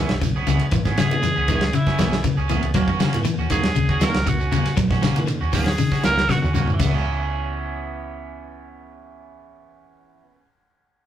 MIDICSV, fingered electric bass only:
0, 0, Header, 1, 3, 480
1, 0, Start_track
1, 0, Tempo, 505945
1, 688, Time_signature, 4, 2, 24, 8
1, 10495, End_track
2, 0, Start_track
2, 0, Title_t, "Fingered electric bass"
2, 0, Program_c, 0, 33
2, 94, Note_on_c, 0, 35, 92
2, 192, Note_off_c, 0, 35, 0
2, 208, Note_on_c, 0, 35, 84
2, 415, Note_off_c, 0, 35, 0
2, 448, Note_on_c, 0, 37, 91
2, 556, Note_off_c, 0, 37, 0
2, 685, Note_on_c, 0, 32, 114
2, 1002, Note_off_c, 0, 32, 0
2, 1061, Note_on_c, 0, 49, 94
2, 1265, Note_off_c, 0, 49, 0
2, 1297, Note_on_c, 0, 37, 84
2, 1602, Note_off_c, 0, 37, 0
2, 1648, Note_on_c, 0, 49, 107
2, 1756, Note_off_c, 0, 49, 0
2, 1888, Note_on_c, 0, 35, 94
2, 2095, Note_off_c, 0, 35, 0
2, 2246, Note_on_c, 0, 37, 85
2, 2456, Note_off_c, 0, 37, 0
2, 2487, Note_on_c, 0, 37, 81
2, 2589, Note_off_c, 0, 37, 0
2, 2605, Note_on_c, 0, 39, 109
2, 2714, Note_off_c, 0, 39, 0
2, 2979, Note_on_c, 0, 44, 96
2, 3076, Note_off_c, 0, 44, 0
2, 3209, Note_on_c, 0, 39, 87
2, 3517, Note_off_c, 0, 39, 0
2, 3567, Note_on_c, 0, 39, 93
2, 3883, Note_off_c, 0, 39, 0
2, 3931, Note_on_c, 0, 37, 95
2, 4031, Note_off_c, 0, 37, 0
2, 4049, Note_on_c, 0, 37, 88
2, 4256, Note_off_c, 0, 37, 0
2, 4290, Note_on_c, 0, 39, 87
2, 4397, Note_off_c, 0, 39, 0
2, 4530, Note_on_c, 0, 34, 110
2, 4844, Note_off_c, 0, 34, 0
2, 4893, Note_on_c, 0, 51, 87
2, 5101, Note_off_c, 0, 51, 0
2, 5134, Note_on_c, 0, 39, 84
2, 5440, Note_off_c, 0, 39, 0
2, 5488, Note_on_c, 0, 51, 109
2, 5596, Note_off_c, 0, 51, 0
2, 5735, Note_on_c, 0, 37, 93
2, 5939, Note_off_c, 0, 37, 0
2, 6099, Note_on_c, 0, 39, 88
2, 6304, Note_off_c, 0, 39, 0
2, 6339, Note_on_c, 0, 44, 85
2, 6435, Note_off_c, 0, 44, 0
2, 6449, Note_on_c, 0, 37, 95
2, 9369, Note_off_c, 0, 37, 0
2, 10495, End_track
3, 0, Start_track
3, 0, Title_t, "Muted fingered electric bass strokes"
3, 2853, Note_on_c, 9, 29, 41
3, 2948, Note_off_c, 9, 29, 0
3, 10495, End_track
0, 0, End_of_file